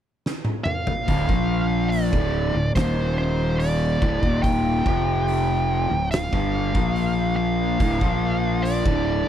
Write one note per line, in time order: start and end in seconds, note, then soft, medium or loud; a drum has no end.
0.26 snare medium
0.45 high tom medium
0.64 1.87 F5 medium
0.64 mid tom medium
0.87 floor tom loud
1.07 1.27 D1 medium
1.07 1.27 D2 medium
1.07 1.28 A2 medium
1.07 kick loud
1.07 open hi-hat medium
1.28 2.09 A#1 medium
1.28 2.11 A#2 medium
1.28 2.11 F3 loud
1.28 2.11 A#3 loud
1.28 kick medium
1.89 2.71 D5 medium
1.89 open hi-hat medium
2.12 2.52 D1 medium
2.12 2.53 D2 medium
2.12 2.53 A2 loud
2.12 2.53 D3 medium
2.12 kick loud
2.54 2.74 D1 medium
2.54 2.75 D2 medium
2.54 2.76 A2 medium
2.75 3.98 D#1 medium
2.75 4.00 D#2 medium
2.75 4.01 A#2 medium
2.75 4.01 D#3 medium
2.75 3.17 C5 medium
2.75 kick loud
2.75 snare loud
2.75 open hi-hat medium
3.18 3.59 C5 medium
3.59 4.40 D5 medium
3.59 open hi-hat medium
4.02 4.21 D1 medium
4.02 4.22 D2 medium
4.02 4.22 A2 loud
4.02 kick loud
4.22 4.82 D#1 medium
4.22 4.85 D#2 medium
4.22 4.85 A#2 medium
4.22 4.85 D#3 medium
4.22 kick loud
4.42 6.07 G5 loud
4.42 kick loud
4.42 open hi-hat medium
4.86 5.87 F1 loud
4.86 5.90 F2 medium
4.86 5.90 C3 medium
4.86 5.90 F3 medium
4.86 kick loud
5.28 open hi-hat medium
5.91 6.30 D1 medium
5.91 6.24 D2 medium
5.91 6.25 A2 medium
6.11 7.34 F5 loud
6.11 snare loud
6.11 open hi-hat medium
6.32 6.72 G1 medium
6.32 6.73 G2 medium
6.32 6.74 D3 medium
6.32 6.74 G3 medium
6.32 kick loud
6.75 7.76 A#1 medium
6.75 7.79 A#2 medium
6.75 7.79 F3 loud
6.75 7.79 A#3 medium
6.75 kick loud
6.96 open hi-hat soft
7.36 8.67 F5 medium
7.80 8.00 D1 medium
7.80 8.01 D2 medium
7.80 8.01 A2 loud
7.80 kick loud
7.80 open hi-hat medium
8.01 8.81 A#1 medium
8.01 8.84 A#2 medium
8.01 8.84 F3 loud
8.01 8.84 A#3 loud
8.01 kick loud
8.63 9.29 D5 medium
8.63 open hi-hat medium
8.85 9.25 D1 medium
8.85 9.26 D2 medium
8.85 9.26 A2 loud
8.85 9.26 D3 loud
8.85 kick loud